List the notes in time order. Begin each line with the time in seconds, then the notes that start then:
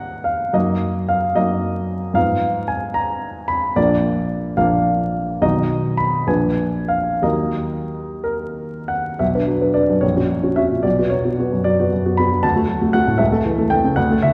Already playing: G#2 F3 A#3 F4 D5 F#5 A#5
0.24 F5
0.53 F#2 F#3 A#3 D#4 D#5
1.09 F5
1.35 F#2 F#3 A#3 D#4 D#5
2.14 G#2 F3 B3 D#4 F5
2.68 G#5
2.94 A#5
3.48 B5
3.76 A#1 F3 A#3 D4 D5
4.57 A#1 F3 A#3 D4 F5
5.42 B1 D#3 D#4 F#4 D#5
5.97 B5
6.27 A#1 F3 D4 B4 G#5
6.88 F5
7.22 D#2 F#3 D#4 A#4 D#5
8.24 A#4
8.88 F#5
9.19 B1 E5
9.35 D4 B4
9.47 F#3
9.61 D4 B4
9.74 D4 B4 D5
9.89 F#2
10.01 A#1 C#5
10.16 C#4 F#4
10.30 F#3
10.43 C#4 F#4
10.56 C#4 F#4 E5
10.71 A#2
10.83 B1 D5
10.98 B3 F#4
11.10 F#3 C#5
11.24 B3 F#4
11.39 B3 F#4
11.52 F#2
11.64 F#3 D5
11.79 B3 F#4
11.93 F#2
12.05 B3 F#4
12.17 B3 F#4 B5
12.32 F#3
12.43 D2 A5
12.56 A3 F#4
12.68 F#3
12.81 A3 F#4
12.93 A3 F#4 F#5
13.07 A2
13.18 C#2 E5
13.32 A3 A4
13.45 E3
13.58 A3 A4
13.70 A3 A4 G5
13.84 C#3
13.96 D2 F#5
14.11 A3 A4
14.22 D3 E5